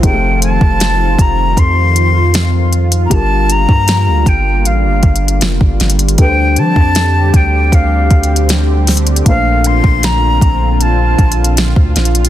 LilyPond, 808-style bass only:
\new Staff \with { instrumentName = "808-style bass" } { \clef bass \time 4/4 \key g \minor \tempo 4 = 78 f,,8. f,,8. f,,8 f,2 | g,,8. g,8 d,16 g,,8 a,,16 g,,16 g,,8 f,,16 g,,16 g,,8 | d,8 f16 f,8. d,8 d,8 d,4. | bes,,8. bes,,8. bes,,4 bes,,8. d,16 bes,,8 | }